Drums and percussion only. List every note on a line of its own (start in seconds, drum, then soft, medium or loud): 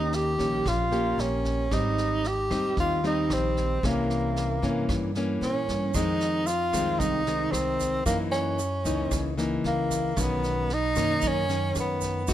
0.12 snare soft
0.39 kick soft
0.39 snare soft
0.66 kick medium
0.66 cross-stick medium
0.66 snare soft
0.92 snare soft
1.19 snare soft
1.45 kick soft
1.45 snare soft
1.71 kick medium
1.71 cross-stick medium
1.71 snare soft
1.98 snare soft
2.24 snare soft
2.51 kick soft
2.51 cross-stick medium
2.51 snare soft
2.77 kick medium
2.77 snare soft
3.04 snare soft
3.30 cross-stick medium
3.30 snare soft
3.57 kick soft
3.57 snare soft
3.83 kick medium
3.83 cross-stick medium
3.83 snare soft
4.10 snare soft
4.36 snare soft
4.62 kick soft
4.62 snare soft
4.89 kick medium
4.89 cross-stick medium
4.89 snare soft
5.15 snare soft
5.42 snare soft
5.68 kick soft
5.68 snare soft
5.94 kick medium
5.94 cross-stick medium
5.94 snare soft
5.94 shaker medium
6.21 snare soft
6.21 shaker soft
6.47 snare soft
6.47 shaker medium
6.73 kick soft
6.73 cross-stick medium
6.73 snare soft
6.73 shaker medium
7.00 kick medium
7.00 snare soft
7.00 shaker medium
7.26 snare soft
7.26 shaker soft
7.53 cross-stick medium
7.53 snare soft
7.53 shaker medium
7.79 kick soft
7.79 snare soft
7.79 shaker medium
8.06 kick medium
8.06 cross-stick medium
8.06 snare soft
8.06 shaker medium
8.33 snare soft
8.33 shaker soft
8.59 snare soft
8.59 shaker medium
8.85 kick soft
8.85 snare soft
8.85 shaker medium
9.11 kick medium
9.11 cross-stick medium
9.11 snare soft
9.11 shaker medium
9.38 snare soft
9.38 shaker soft
9.65 snare soft
9.91 kick soft
9.91 snare soft
9.91 shaker medium
10.16 kick medium
10.16 cross-stick medium
10.16 snare soft
10.16 shaker medium
10.43 snare soft
10.43 shaker soft
10.70 snare soft
10.96 kick soft
10.96 cross-stick medium
10.96 snare soft
10.96 shaker medium
11.22 kick medium
11.22 snare soft
11.22 shaker medium
11.49 snare soft
11.49 shaker soft
11.75 cross-stick medium
11.75 snare soft
11.75 shaker medium
12.01 kick soft
12.01 snare soft
12.01 shaker medium
12.27 kick medium
12.27 cross-stick medium
12.27 snare soft
12.27 shaker medium